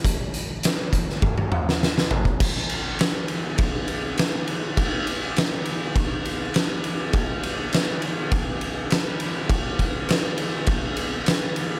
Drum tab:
CC |----------------|x---------------|----------------|----------------|
RD |----------------|--x-x-x-x-x-x-x-|x-x-x-x-x-x-x-x-|x-x-x-x-x-x-x-x-|
HH |x-x-x-x---------|----------------|----------------|----------------|
SD |----o--o---ooo--|-o--o-------o---|----o-------o---|----o-------o---|
T1 |--------oo------|----------------|----------------|----------------|
T2 |----------o-----|----------------|----------------|----------------|
FT |--------------o-|----------------|----------------|----------------|
BD |o-----o-o------o|o-------o-------|o-------o-------|o-------o-------|

CC |----------------|
RD |x-x-x-x-x-x-x-x-|
HH |----------------|
SD |----o-------o---|
T1 |----------------|
T2 |----------------|
FT |----------------|
BD |o-o-----o-------|